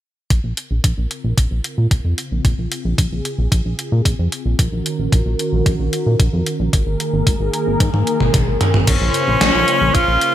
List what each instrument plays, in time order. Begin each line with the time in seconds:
0.30 analog synth bass A#1, analog synth pad C#3 C4 F4 A#4, kick, closed hi-hat
0.44 analog synth bass A#1
0.57 closed hi-hat
0.71 analog synth bass A#1
0.84 analog synth bass A#1, kick, closed hi-hat
0.97 analog synth bass A#1
1.11 closed hi-hat
1.24 analog synth bass A#1
1.38 analog synth bass A#1, kick, closed hi-hat
1.51 analog synth bass A#1
1.64 closed hi-hat
1.78 analog synth bass A#2
1.91 analog synth bass A#1, kick, closed hi-hat
2.05 analog synth bass F2
2.18 closed hi-hat
2.31 analog synth bass A#1
2.45 analog synth bass A#1, analog synth pad G#4, kick, closed hi-hat
2.58 analog synth bass A#1
2.72 closed hi-hat
2.85 analog synth bass A#1
2.98 analog synth bass A#1, kick, closed hi-hat
3.12 analog synth bass A#1
3.25 closed hi-hat
3.38 analog synth bass A#1
3.52 analog synth bass A#1, kick, closed hi-hat
3.65 analog synth bass A#1
3.79 closed hi-hat
3.92 analog synth bass A#2
4.05 analog synth bass A#1, kick, closed hi-hat
4.19 analog synth bass F2
4.32 closed hi-hat
4.46 analog synth bass A#1
4.59 analog synth bass A#1, analog synth pad D#3 C#4 F#4 A#4, kick, closed hi-hat
4.72 analog synth bass A#1
4.86 closed hi-hat
4.99 analog synth bass A#1
5.12 analog synth bass A#1, kick, closed hi-hat
5.26 analog synth bass A#1
5.39 closed hi-hat
5.53 analog synth bass A#1
5.66 analog synth bass A#1, kick, closed hi-hat
5.79 analog synth bass A#1
5.93 closed hi-hat
6.06 analog synth bass A#2
6.20 analog synth bass A#1, kick, closed hi-hat
6.33 analog synth bass F2
6.46 closed hi-hat
6.60 analog synth bass A#1
6.73 analog synth bass G#1, analog synth pad D#3 A#3 G#4 A#4, kick, closed hi-hat
6.87 analog synth bass G#1
7.00 closed hi-hat
7.13 analog synth bass G#1
7.27 analog synth bass G#1, kick, closed hi-hat
7.40 analog synth bass G#1
7.54 closed hi-hat
7.67 analog synth bass G#1
7.80 analog synth bass G#2, kick, closed hi-hat, high tom
7.94 analog synth bass G#2, high tom
8.07 closed hi-hat
8.20 analog synth bass G#1, mid tom
8.34 analog synth bass G#1, kick, closed hi-hat, mid tom
8.47 analog synth bass G#1
8.61 closed hi-hat, mid tom
8.74 analog synth bass G#1, mid tom
8.87 analog synth bass A#1, analog synth pad C#3 A#3 F4 C5, tenor saxophone C#4, kick, closed hi-hat, crash
9.01 analog synth bass A#1
9.14 closed hi-hat
9.28 analog synth bass A#1
9.41 analog synth bass A#1, snare, closed hi-hat
9.54 analog synth bass A#1
9.68 closed hi-hat
9.81 analog synth bass A#1
9.95 analog synth bass A#1, tenor saxophone F4, kick, closed hi-hat
10.08 analog synth bass A#1
10.21 closed hi-hat